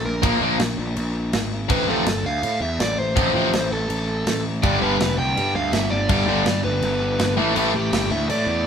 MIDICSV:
0, 0, Header, 1, 6, 480
1, 0, Start_track
1, 0, Tempo, 366300
1, 312, Time_signature, 4, 2, 24, 8
1, 11359, End_track
2, 0, Start_track
2, 0, Title_t, "Overdriven electric guitar"
2, 0, Program_c, 0, 29
2, 73, Note_on_c, 0, 70, 77
2, 519, Note_off_c, 0, 70, 0
2, 2238, Note_on_c, 0, 71, 93
2, 2483, Note_off_c, 0, 71, 0
2, 2492, Note_on_c, 0, 69, 93
2, 2962, Note_on_c, 0, 77, 100
2, 2977, Note_off_c, 0, 69, 0
2, 3430, Note_off_c, 0, 77, 0
2, 3435, Note_on_c, 0, 76, 90
2, 3673, Note_off_c, 0, 76, 0
2, 3678, Note_on_c, 0, 74, 104
2, 3910, Note_off_c, 0, 74, 0
2, 3910, Note_on_c, 0, 72, 90
2, 4882, Note_off_c, 0, 72, 0
2, 4887, Note_on_c, 0, 69, 88
2, 5788, Note_off_c, 0, 69, 0
2, 6076, Note_on_c, 0, 74, 105
2, 6298, Note_off_c, 0, 74, 0
2, 6311, Note_on_c, 0, 71, 97
2, 6759, Note_off_c, 0, 71, 0
2, 6796, Note_on_c, 0, 79, 99
2, 7275, Note_off_c, 0, 79, 0
2, 7280, Note_on_c, 0, 77, 98
2, 7502, Note_off_c, 0, 77, 0
2, 7502, Note_on_c, 0, 76, 99
2, 7736, Note_on_c, 0, 74, 94
2, 7755, Note_off_c, 0, 76, 0
2, 8699, Note_off_c, 0, 74, 0
2, 8704, Note_on_c, 0, 71, 97
2, 9615, Note_off_c, 0, 71, 0
2, 9901, Note_on_c, 0, 69, 103
2, 10157, Note_off_c, 0, 69, 0
2, 10157, Note_on_c, 0, 67, 100
2, 10631, Note_on_c, 0, 76, 92
2, 10648, Note_off_c, 0, 67, 0
2, 10854, Note_off_c, 0, 76, 0
2, 10877, Note_on_c, 0, 74, 102
2, 11359, Note_off_c, 0, 74, 0
2, 11359, End_track
3, 0, Start_track
3, 0, Title_t, "Overdriven electric guitar"
3, 0, Program_c, 1, 29
3, 6078, Note_on_c, 1, 43, 89
3, 6089, Note_on_c, 1, 50, 99
3, 6094, Note_on_c, 1, 55, 108
3, 6309, Note_off_c, 1, 50, 0
3, 6317, Note_off_c, 1, 43, 0
3, 6323, Note_on_c, 1, 43, 81
3, 6325, Note_on_c, 1, 50, 104
3, 6327, Note_off_c, 1, 55, 0
3, 6332, Note_on_c, 1, 55, 105
3, 6558, Note_off_c, 1, 43, 0
3, 6561, Note_off_c, 1, 50, 0
3, 6563, Note_on_c, 1, 43, 72
3, 6575, Note_off_c, 1, 55, 0
3, 6577, Note_on_c, 1, 50, 96
3, 6580, Note_on_c, 1, 55, 90
3, 6788, Note_off_c, 1, 43, 0
3, 6802, Note_off_c, 1, 50, 0
3, 6804, Note_on_c, 1, 43, 90
3, 6806, Note_off_c, 1, 55, 0
3, 6818, Note_on_c, 1, 50, 92
3, 6822, Note_on_c, 1, 55, 93
3, 7023, Note_off_c, 1, 43, 0
3, 7030, Note_off_c, 1, 50, 0
3, 7039, Note_off_c, 1, 55, 0
3, 7039, Note_on_c, 1, 43, 84
3, 7046, Note_on_c, 1, 50, 83
3, 7055, Note_on_c, 1, 55, 100
3, 7262, Note_off_c, 1, 43, 0
3, 7270, Note_off_c, 1, 50, 0
3, 7278, Note_on_c, 1, 43, 86
3, 7280, Note_off_c, 1, 55, 0
3, 7286, Note_on_c, 1, 50, 74
3, 7296, Note_on_c, 1, 55, 89
3, 7519, Note_off_c, 1, 43, 0
3, 7520, Note_off_c, 1, 50, 0
3, 7531, Note_off_c, 1, 55, 0
3, 7535, Note_on_c, 1, 43, 75
3, 7535, Note_on_c, 1, 50, 89
3, 7546, Note_on_c, 1, 55, 89
3, 7741, Note_off_c, 1, 43, 0
3, 7744, Note_off_c, 1, 50, 0
3, 7755, Note_off_c, 1, 55, 0
3, 7756, Note_on_c, 1, 43, 75
3, 7759, Note_on_c, 1, 50, 89
3, 7771, Note_on_c, 1, 55, 95
3, 7982, Note_off_c, 1, 43, 0
3, 7991, Note_off_c, 1, 50, 0
3, 7996, Note_off_c, 1, 55, 0
3, 7997, Note_on_c, 1, 43, 101
3, 8007, Note_on_c, 1, 50, 108
3, 8012, Note_on_c, 1, 55, 109
3, 8215, Note_off_c, 1, 43, 0
3, 8222, Note_off_c, 1, 50, 0
3, 8230, Note_off_c, 1, 55, 0
3, 8231, Note_on_c, 1, 43, 93
3, 8238, Note_on_c, 1, 50, 88
3, 8246, Note_on_c, 1, 55, 103
3, 8451, Note_off_c, 1, 43, 0
3, 8463, Note_off_c, 1, 50, 0
3, 8467, Note_off_c, 1, 55, 0
3, 8467, Note_on_c, 1, 43, 77
3, 8478, Note_on_c, 1, 50, 99
3, 8483, Note_on_c, 1, 55, 84
3, 8689, Note_off_c, 1, 43, 0
3, 8701, Note_off_c, 1, 50, 0
3, 8705, Note_on_c, 1, 43, 88
3, 8707, Note_off_c, 1, 55, 0
3, 8717, Note_on_c, 1, 50, 97
3, 8723, Note_on_c, 1, 55, 103
3, 8934, Note_off_c, 1, 43, 0
3, 8943, Note_off_c, 1, 50, 0
3, 8949, Note_on_c, 1, 43, 87
3, 8954, Note_off_c, 1, 55, 0
3, 8959, Note_on_c, 1, 50, 87
3, 8970, Note_on_c, 1, 55, 85
3, 9149, Note_off_c, 1, 43, 0
3, 9164, Note_off_c, 1, 50, 0
3, 9164, Note_on_c, 1, 43, 86
3, 9173, Note_off_c, 1, 55, 0
3, 9180, Note_on_c, 1, 50, 81
3, 9189, Note_on_c, 1, 55, 99
3, 9393, Note_off_c, 1, 43, 0
3, 9405, Note_off_c, 1, 50, 0
3, 9408, Note_on_c, 1, 43, 87
3, 9414, Note_off_c, 1, 55, 0
3, 9420, Note_on_c, 1, 50, 83
3, 9429, Note_on_c, 1, 55, 101
3, 9645, Note_off_c, 1, 43, 0
3, 9651, Note_off_c, 1, 50, 0
3, 9656, Note_off_c, 1, 55, 0
3, 9675, Note_on_c, 1, 45, 109
3, 9684, Note_on_c, 1, 52, 116
3, 9693, Note_on_c, 1, 57, 120
3, 9892, Note_off_c, 1, 45, 0
3, 9898, Note_on_c, 1, 45, 98
3, 9901, Note_off_c, 1, 52, 0
3, 9906, Note_on_c, 1, 52, 111
3, 9915, Note_off_c, 1, 57, 0
3, 9920, Note_on_c, 1, 57, 105
3, 10141, Note_off_c, 1, 45, 0
3, 10147, Note_on_c, 1, 45, 99
3, 10154, Note_off_c, 1, 52, 0
3, 10159, Note_on_c, 1, 52, 102
3, 10163, Note_off_c, 1, 57, 0
3, 10169, Note_on_c, 1, 57, 96
3, 10385, Note_off_c, 1, 45, 0
3, 10389, Note_off_c, 1, 52, 0
3, 10391, Note_on_c, 1, 45, 74
3, 10394, Note_on_c, 1, 52, 88
3, 10401, Note_off_c, 1, 57, 0
3, 10406, Note_on_c, 1, 57, 85
3, 10624, Note_off_c, 1, 45, 0
3, 10630, Note_on_c, 1, 45, 85
3, 10636, Note_off_c, 1, 52, 0
3, 10642, Note_on_c, 1, 52, 90
3, 10643, Note_off_c, 1, 57, 0
3, 10649, Note_on_c, 1, 57, 101
3, 10846, Note_off_c, 1, 45, 0
3, 10859, Note_off_c, 1, 57, 0
3, 10862, Note_on_c, 1, 45, 91
3, 10863, Note_off_c, 1, 52, 0
3, 10868, Note_on_c, 1, 52, 94
3, 10875, Note_on_c, 1, 57, 92
3, 11103, Note_off_c, 1, 45, 0
3, 11117, Note_off_c, 1, 57, 0
3, 11119, Note_on_c, 1, 45, 82
3, 11126, Note_off_c, 1, 52, 0
3, 11132, Note_on_c, 1, 52, 87
3, 11132, Note_on_c, 1, 57, 84
3, 11341, Note_off_c, 1, 45, 0
3, 11357, Note_off_c, 1, 52, 0
3, 11359, Note_off_c, 1, 57, 0
3, 11359, End_track
4, 0, Start_track
4, 0, Title_t, "Distorted electric guitar"
4, 0, Program_c, 2, 30
4, 294, Note_on_c, 2, 46, 84
4, 304, Note_on_c, 2, 53, 94
4, 311, Note_on_c, 2, 58, 96
4, 495, Note_off_c, 2, 46, 0
4, 500, Note_off_c, 2, 53, 0
4, 503, Note_off_c, 2, 58, 0
4, 548, Note_on_c, 2, 46, 106
4, 550, Note_on_c, 2, 53, 108
4, 562, Note_on_c, 2, 58, 110
4, 742, Note_off_c, 2, 46, 0
4, 743, Note_off_c, 2, 53, 0
4, 749, Note_off_c, 2, 58, 0
4, 2211, Note_on_c, 2, 41, 88
4, 2226, Note_on_c, 2, 48, 103
4, 2230, Note_on_c, 2, 53, 108
4, 2415, Note_off_c, 2, 41, 0
4, 2421, Note_off_c, 2, 48, 0
4, 2424, Note_off_c, 2, 53, 0
4, 2459, Note_on_c, 2, 41, 98
4, 2469, Note_on_c, 2, 48, 112
4, 2475, Note_on_c, 2, 53, 108
4, 2658, Note_off_c, 2, 41, 0
4, 2663, Note_off_c, 2, 48, 0
4, 2667, Note_off_c, 2, 53, 0
4, 4138, Note_on_c, 2, 41, 83
4, 4150, Note_on_c, 2, 48, 94
4, 4155, Note_on_c, 2, 53, 105
4, 4338, Note_off_c, 2, 41, 0
4, 4344, Note_off_c, 2, 48, 0
4, 4346, Note_off_c, 2, 53, 0
4, 4373, Note_on_c, 2, 41, 96
4, 4381, Note_on_c, 2, 48, 96
4, 4392, Note_on_c, 2, 53, 109
4, 4576, Note_off_c, 2, 41, 0
4, 4579, Note_off_c, 2, 48, 0
4, 4585, Note_off_c, 2, 53, 0
4, 11359, End_track
5, 0, Start_track
5, 0, Title_t, "Picked electric bass"
5, 0, Program_c, 3, 34
5, 63, Note_on_c, 3, 34, 80
5, 298, Note_off_c, 3, 34, 0
5, 303, Note_on_c, 3, 34, 96
5, 525, Note_off_c, 3, 34, 0
5, 533, Note_on_c, 3, 34, 87
5, 773, Note_off_c, 3, 34, 0
5, 778, Note_on_c, 3, 34, 86
5, 1009, Note_off_c, 3, 34, 0
5, 1017, Note_on_c, 3, 34, 81
5, 1252, Note_off_c, 3, 34, 0
5, 1260, Note_on_c, 3, 34, 90
5, 1727, Note_off_c, 3, 34, 0
5, 1747, Note_on_c, 3, 32, 95
5, 2222, Note_off_c, 3, 32, 0
5, 2222, Note_on_c, 3, 33, 97
5, 2447, Note_off_c, 3, 33, 0
5, 2454, Note_on_c, 3, 33, 88
5, 2681, Note_off_c, 3, 33, 0
5, 2689, Note_on_c, 3, 31, 78
5, 2922, Note_off_c, 3, 31, 0
5, 2930, Note_on_c, 3, 38, 91
5, 3172, Note_off_c, 3, 38, 0
5, 3184, Note_on_c, 3, 45, 90
5, 3407, Note_off_c, 3, 45, 0
5, 3414, Note_on_c, 3, 40, 97
5, 3654, Note_off_c, 3, 40, 0
5, 3662, Note_on_c, 3, 33, 94
5, 3898, Note_off_c, 3, 33, 0
5, 3912, Note_on_c, 3, 33, 96
5, 4137, Note_off_c, 3, 33, 0
5, 4144, Note_on_c, 3, 33, 98
5, 4359, Note_off_c, 3, 33, 0
5, 4367, Note_on_c, 3, 33, 94
5, 4611, Note_off_c, 3, 33, 0
5, 4620, Note_on_c, 3, 33, 94
5, 4848, Note_off_c, 3, 33, 0
5, 4856, Note_on_c, 3, 33, 85
5, 5088, Note_off_c, 3, 33, 0
5, 5096, Note_on_c, 3, 33, 98
5, 5566, Note_off_c, 3, 33, 0
5, 5581, Note_on_c, 3, 33, 94
5, 6048, Note_off_c, 3, 33, 0
5, 6071, Note_on_c, 3, 31, 105
5, 6298, Note_off_c, 3, 31, 0
5, 6306, Note_on_c, 3, 31, 91
5, 6540, Note_off_c, 3, 31, 0
5, 6551, Note_on_c, 3, 29, 79
5, 6782, Note_off_c, 3, 29, 0
5, 6791, Note_on_c, 3, 36, 88
5, 7018, Note_off_c, 3, 36, 0
5, 7026, Note_on_c, 3, 43, 100
5, 7260, Note_off_c, 3, 43, 0
5, 7267, Note_on_c, 3, 38, 90
5, 7492, Note_off_c, 3, 38, 0
5, 7500, Note_on_c, 3, 31, 100
5, 7736, Note_off_c, 3, 31, 0
5, 7756, Note_on_c, 3, 31, 90
5, 7975, Note_off_c, 3, 31, 0
5, 7983, Note_on_c, 3, 31, 106
5, 8208, Note_off_c, 3, 31, 0
5, 8216, Note_on_c, 3, 31, 88
5, 8454, Note_off_c, 3, 31, 0
5, 8466, Note_on_c, 3, 31, 90
5, 8700, Note_off_c, 3, 31, 0
5, 8709, Note_on_c, 3, 31, 91
5, 8934, Note_off_c, 3, 31, 0
5, 8942, Note_on_c, 3, 31, 98
5, 9408, Note_off_c, 3, 31, 0
5, 9437, Note_on_c, 3, 31, 106
5, 9654, Note_off_c, 3, 31, 0
5, 9662, Note_on_c, 3, 33, 83
5, 9890, Note_off_c, 3, 33, 0
5, 9898, Note_on_c, 3, 33, 99
5, 10135, Note_off_c, 3, 33, 0
5, 10149, Note_on_c, 3, 33, 95
5, 10374, Note_off_c, 3, 33, 0
5, 10382, Note_on_c, 3, 31, 96
5, 10616, Note_off_c, 3, 31, 0
5, 10626, Note_on_c, 3, 38, 88
5, 10847, Note_off_c, 3, 38, 0
5, 10855, Note_on_c, 3, 45, 90
5, 11088, Note_off_c, 3, 45, 0
5, 11096, Note_on_c, 3, 40, 91
5, 11333, Note_off_c, 3, 40, 0
5, 11359, End_track
6, 0, Start_track
6, 0, Title_t, "Drums"
6, 306, Note_on_c, 9, 36, 115
6, 309, Note_on_c, 9, 49, 58
6, 437, Note_off_c, 9, 36, 0
6, 440, Note_off_c, 9, 49, 0
6, 780, Note_on_c, 9, 49, 63
6, 785, Note_on_c, 9, 38, 125
6, 911, Note_off_c, 9, 49, 0
6, 916, Note_off_c, 9, 38, 0
6, 1265, Note_on_c, 9, 49, 52
6, 1396, Note_off_c, 9, 49, 0
6, 1745, Note_on_c, 9, 49, 64
6, 1750, Note_on_c, 9, 38, 121
6, 1876, Note_off_c, 9, 49, 0
6, 1881, Note_off_c, 9, 38, 0
6, 2222, Note_on_c, 9, 49, 66
6, 2227, Note_on_c, 9, 36, 116
6, 2353, Note_off_c, 9, 49, 0
6, 2358, Note_off_c, 9, 36, 0
6, 2704, Note_on_c, 9, 49, 70
6, 2709, Note_on_c, 9, 38, 121
6, 2835, Note_off_c, 9, 49, 0
6, 2840, Note_off_c, 9, 38, 0
6, 3186, Note_on_c, 9, 49, 57
6, 3317, Note_off_c, 9, 49, 0
6, 3669, Note_on_c, 9, 49, 56
6, 3674, Note_on_c, 9, 38, 107
6, 3800, Note_off_c, 9, 49, 0
6, 3805, Note_off_c, 9, 38, 0
6, 4146, Note_on_c, 9, 49, 64
6, 4151, Note_on_c, 9, 36, 115
6, 4277, Note_off_c, 9, 49, 0
6, 4282, Note_off_c, 9, 36, 0
6, 4630, Note_on_c, 9, 49, 68
6, 4635, Note_on_c, 9, 38, 117
6, 4761, Note_off_c, 9, 49, 0
6, 4766, Note_off_c, 9, 38, 0
6, 5109, Note_on_c, 9, 49, 54
6, 5240, Note_off_c, 9, 49, 0
6, 5592, Note_on_c, 9, 49, 65
6, 5597, Note_on_c, 9, 38, 110
6, 5723, Note_off_c, 9, 49, 0
6, 5728, Note_off_c, 9, 38, 0
6, 6073, Note_on_c, 9, 49, 61
6, 6074, Note_on_c, 9, 36, 114
6, 6204, Note_off_c, 9, 49, 0
6, 6205, Note_off_c, 9, 36, 0
6, 6557, Note_on_c, 9, 49, 66
6, 6562, Note_on_c, 9, 38, 125
6, 6688, Note_off_c, 9, 49, 0
6, 6693, Note_off_c, 9, 38, 0
6, 7041, Note_on_c, 9, 49, 55
6, 7172, Note_off_c, 9, 49, 0
6, 7506, Note_on_c, 9, 49, 56
6, 7512, Note_on_c, 9, 38, 106
6, 7637, Note_off_c, 9, 49, 0
6, 7643, Note_off_c, 9, 38, 0
6, 7983, Note_on_c, 9, 49, 63
6, 7987, Note_on_c, 9, 36, 121
6, 8114, Note_off_c, 9, 49, 0
6, 8118, Note_off_c, 9, 36, 0
6, 8462, Note_on_c, 9, 49, 66
6, 8467, Note_on_c, 9, 38, 125
6, 8593, Note_off_c, 9, 49, 0
6, 8598, Note_off_c, 9, 38, 0
6, 8943, Note_on_c, 9, 49, 51
6, 9074, Note_off_c, 9, 49, 0
6, 9427, Note_on_c, 9, 49, 59
6, 9432, Note_on_c, 9, 38, 125
6, 9558, Note_off_c, 9, 49, 0
6, 9563, Note_off_c, 9, 38, 0
6, 9905, Note_on_c, 9, 49, 64
6, 10036, Note_off_c, 9, 49, 0
6, 10389, Note_on_c, 9, 49, 69
6, 10394, Note_on_c, 9, 38, 121
6, 10520, Note_off_c, 9, 49, 0
6, 10526, Note_off_c, 9, 38, 0
6, 10872, Note_on_c, 9, 49, 56
6, 11003, Note_off_c, 9, 49, 0
6, 11359, End_track
0, 0, End_of_file